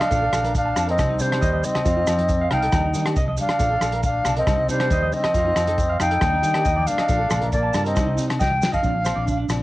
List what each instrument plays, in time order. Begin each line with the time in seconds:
Already playing: flugelhorn D4, flute F5
0.00 clean electric guitar D#5, cross-stick, closed hi-hat, high conga, low agogo, maracas
0.10 fingered electric bass A#1, nylon-string guitar F3 A3 D4, clean electric guitar A4, kick, closed hi-hat, maracas
0.22 nylon-string guitar D4, clean electric guitar A4
0.33 fingered electric bass A#1, clean electric guitar A4, cross-stick, closed hi-hat, high conga, low conga, low agogo, maracas
0.44 nylon-string guitar A3 D4, clean electric guitar A#4, closed hi-hat, high conga, maracas
0.55 flugelhorn D4, flute F5, kick, closed hi-hat, maracas
0.66 clean electric guitar A5
0.76 fingered electric bass F2, nylon-string guitar F3 A3 D4, clean electric guitar A5, cross-stick, closed hi-hat, low agogo, maracas
0.87 flugelhorn C4, clean electric guitar A#4, flute D#5, closed hi-hat
0.98 fingered electric bass C2, nylon-string guitar G3 D4 D#4, muted clean electric guitar stroke, kick, cross-stick, closed hi-hat, high conga, low conga, low agogo, maracas
1.09 clean electric guitar D#4
1.19 fingered electric bass C3, nylon-string guitar G3 D4 D#4, flugelhorn G3, flute C5, closed hi-hat, maracas
1.31 nylon-string guitar D#4, clean electric guitar C5, cross-stick, closed hi-hat, low agogo
1.41 fingered electric bass D#2, clean electric guitar D#5, kick, closed hi-hat, maracas
1.53 clean electric guitar D#5, high conga
1.63 nylon-string guitar G3 D#4, flugelhorn C4, flute D#5, closed hi-hat, low conga, maracas
1.75 clean electric guitar D#5, cross-stick, closed hi-hat, low conga, low agogo
1.84 fingered electric bass F2, nylon-string guitar A3 C4, clean electric guitar F4, muted nylon-string guitar stroke, kick, closed hi-hat, maracas
1.95 nylon-string guitar D#4, clean electric guitar F4
2.07 fingered electric bass F2, clean electric guitar F4, cross-stick, closed hi-hat, high conga, low agogo, maracas
2.17 nylon-string guitar C4 D#4, closed hi-hat, high conga
2.29 kick, closed hi-hat, maracas
2.41 clean electric guitar F5
2.50 fingered electric bass C2, nylon-string guitar A3 C4 D#4, flugelhorn D#4, clean electric guitar F5, flute G5, cross-stick, closed hi-hat, low conga, low agogo
2.62 clean electric guitar A4, closed hi-hat
2.72 fingered electric bass D#2, nylon-string guitar G3 A#3 D4, clean electric guitar D#4, kick, cross-stick, closed hi-hat, high conga, low conga, low agogo, maracas
2.85 clean electric guitar D#4
2.93 fingered electric bass D#3, nylon-string guitar G3 A#3 D4, clean electric guitar D#4, closed hi-hat, maracas
3.05 nylon-string guitar A#3 D4, clean electric guitar G4, cross-stick, closed hi-hat, low agogo
3.16 fingered electric bass C2, clean electric guitar D#5, kick, closed hi-hat, maracas
3.28 clean electric guitar D#5, high conga
3.37 nylon-string guitar G3 D4, flugelhorn D4, flute F5, muted nylon-string guitar stroke, closed hi-hat, low conga, maracas
3.49 cross-stick, closed hi-hat, high conga, low agogo, maracas
3.59 fingered electric bass A#1, nylon-string guitar F3 A3 D4, clean electric guitar A4, kick, closed hi-hat, maracas
3.72 nylon-string guitar A3, clean electric guitar A4
3.81 fingered electric bass A#1, clean electric guitar A4, cross-stick, closed hi-hat, high conga, low agogo, maracas
3.92 nylon-string guitar A3 D4, clean electric guitar A#4, closed hi-hat, high conga
4.03 flugelhorn D4, flute F5, kick, closed hi-hat, maracas
4.24 fingered electric bass B1, nylon-string guitar F3 A3 D4, clean electric guitar A5, cross-stick, closed hi-hat, low conga, low agogo, maracas
4.37 flugelhorn C4, clean electric guitar A#4, flute D#5, closed hi-hat
4.47 fingered electric bass C2, nylon-string guitar G3 D4 D#4, clean electric guitar D#4, kick, cross-stick, closed hi-hat, high conga, low conga, low agogo, maracas
4.68 fingered electric bass C3, nylon-string guitar G3 D4 D#4, flugelhorn G3, clean electric guitar D#4, flute C5, closed hi-hat, maracas
4.78 nylon-string guitar D4 D#4, clean electric guitar C5, cross-stick, closed hi-hat, low agogo
4.90 fingered electric bass D#2, clean electric guitar D#5, kick, closed hi-hat, maracas
5.02 clean electric guitar D#5, high conga
5.11 nylon-string guitar G3 D4 D#4, flugelhorn C4, flute D#5, closed hi-hat, low conga, maracas
5.24 clean electric guitar D#5, cross-stick, closed hi-hat, high conga, low agogo, maracas
5.34 fingered electric bass F2, nylon-string guitar A3 C4, clean electric guitar F4, muted nylon-string guitar stroke, kick, closed hi-hat, maracas
5.45 nylon-string guitar C4 D#4, clean electric guitar F4
5.56 fingered electric bass F2, clean electric guitar F4, cross-stick, closed hi-hat, high conga, low agogo, maracas
5.65 nylon-string guitar C4 D#4, clean electric guitar A4, closed hi-hat, high conga
5.78 kick, closed hi-hat, maracas
5.90 clean electric guitar F5
5.99 fingered electric bass F2, nylon-string guitar A3 C4 D#4, flugelhorn D#4, clean electric guitar F5, flute G5, cross-stick, closed hi-hat, low conga, low agogo, maracas
6.11 clean electric guitar A4, closed hi-hat
6.21 fingered electric bass D#2, nylon-string guitar G3 A#3 D4, clean electric guitar D#4, kick, cross-stick, closed hi-hat, high conga, low conga, low agogo, maracas
6.33 clean electric guitar D#4
6.42 fingered electric bass D#3, nylon-string guitar G3 A#3 D4, clean electric guitar D#4, closed hi-hat, maracas
6.54 nylon-string guitar A#3 D4, clean electric guitar G4, cross-stick, closed hi-hat, low agogo
6.65 fingered electric bass D#2, clean electric guitar D#5, kick, closed hi-hat, maracas
6.76 clean electric guitar D5, high conga
6.87 nylon-string guitar G3 A#3 D4, flugelhorn D4, flute F5, closed hi-hat, low conga, maracas
6.98 clean electric guitar D#5, cross-stick, closed hi-hat, high conga, low agogo, maracas
7.08 fingered electric bass A#1, nylon-string guitar F3 A3 D4, clean electric guitar A4, kick, closed hi-hat, maracas
7.20 nylon-string guitar A3 D4, clean electric guitar A4
7.30 fingered electric bass A#1, clean electric guitar A4, cross-stick, closed hi-hat, high conga, low conga, low agogo, maracas
7.41 nylon-string guitar A3 D4, clean electric guitar A#4, closed hi-hat, high conga
7.52 flugelhorn A#3, flute D5, kick, closed hi-hat, maracas
7.63 clean electric guitar A5
7.73 fingered electric bass G2, nylon-string guitar F3 A3 D4, clean electric guitar A5, cross-stick, closed hi-hat, low conga, low agogo, maracas
7.84 flugelhorn C4, clean electric guitar A#4, flute D#5, closed hi-hat, maracas
7.95 fingered electric bass C2, nylon-string guitar G3 D4 D#4, clean electric guitar D#4, kick, cross-stick, closed hi-hat, high conga, low conga, low agogo, maracas
8.07 clean electric guitar D#4
8.17 fingered electric bass C3, nylon-string guitar G3 D4 D#4, clean electric guitar D#4, closed hi-hat, maracas
8.28 nylon-string guitar D4 D#4, muted clean electric guitar stroke, cross-stick, closed hi-hat, low agogo
8.39 fingered electric bass C2, clean electric guitar D#5, flute G5, kick, snare, maracas
8.50 muted clean electric guitar stroke, high conga
8.61 nylon-string guitar G3 D4 D#4, snare, low conga, maracas
8.72 clean electric guitar D#5, flute F5, kick, high conga, low agogo, maracas
8.82 fingered electric bass A#1, nylon-string guitar F3 C4 D4, clean electric guitar D4, kick, maracas
8.95 high conga
9.04 nylon-string guitar F3 C4 D4, clean electric guitar C5, cross-stick, closed hi-hat, low agogo, maracas
9.16 fingered electric bass A#1, nylon-string guitar C4 D4, clean electric guitar D5, high conga
9.26 clean electric guitar D4, kick, low conga, maracas
9.37 clean electric guitar D4
9.48 fingered electric bass A#1, nylon-string guitar F3 C4 D4, cross-stick, closed hi-hat, low conga, low agogo, maracas